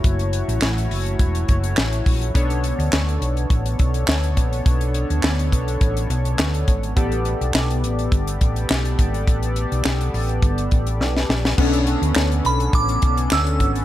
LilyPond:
<<
  \new Staff \with { instrumentName = "Synth bell" } { \time 4/4 \key b \minor \tempo 4 = 104 r1 | r1 | r1 | r1 |
r1 | r4. b''8 d'''4 e'''4 | }
  \new Staff \with { instrumentName = "Analog polysynth" } { \time 4/4 \key b \minor <a e' fis' cis''>1 | <b d' a' cis''>1~ | <b d' a' cis''>1 | <b g' a' d''>1~ |
<b g' a' d''>1 | <b cis' d' a'>1 | }
  \new Staff \with { instrumentName = "Fingered electric bass" } { \clef bass \time 4/4 \key b \minor fis,,8. a,,16 a,,8 fis,,8 e,,8 fis,,8 a,,8 ais,,8 | b,,8. d,16 d,8 b,,8 a,,8 b,,8 d,8 ais,,8 | b,,8. d,16 d,8 b,,8 a,,8 b,,8 d,8 gis,,8 | a,,8. b,,16 b,,8 a,,8 g,,8 a,,8 b,,8 gis,,8 |
a,,8. b,,16 b,,8 a,,8 g,,8 a,,8 b,,8 ais,,8 | b,,8. d,16 d,8 b,,8 a,,8 b,,8 d,8 gis,,8 | }
  \new DrumStaff \with { instrumentName = "Drums" } \drummode { \time 4/4 <hh bd>16 hh16 hh16 hh16 <hc sn>16 hh16 hho16 hh16 <hh bd>16 hh16 <hh bd>16 hh16 <hc sn>16 hh16 <hho bd>16 hh16 | <hh bd>16 hh16 hh16 hh16 <hc sn>16 hh16 hh16 hh16 <hh bd>16 hh16 <hh bd>16 hh16 <hc sn>16 hh16 <hh bd>16 hh16 | <hh bd>16 hh16 hh16 hh16 <hc sn>16 hh16 <hh bd>16 hh16 <hh bd>16 hh16 hh16 hh16 <hc sn>16 hh16 <hh bd>16 hh16 | <hh bd>16 hh16 hh16 hh16 <hc sn>16 hh16 hh16 hh16 <hh bd>16 hh16 <hh bd>16 hh16 <hc sn>16 hh16 <hh bd>16 hh16 |
<hh bd>16 hh16 hh16 hh16 <hc sn>16 hh16 hho16 hh16 <hh bd>16 hh16 <hh bd>16 hh16 sn16 sn16 sn16 sn16 | <cymc bd>16 hh16 hh16 hh16 <hc sn>16 hh16 hh16 hh16 <hh bd>16 hh16 <hh bd>16 hh16 <hc sn>16 hh16 <hh bd>16 hh16 | }
>>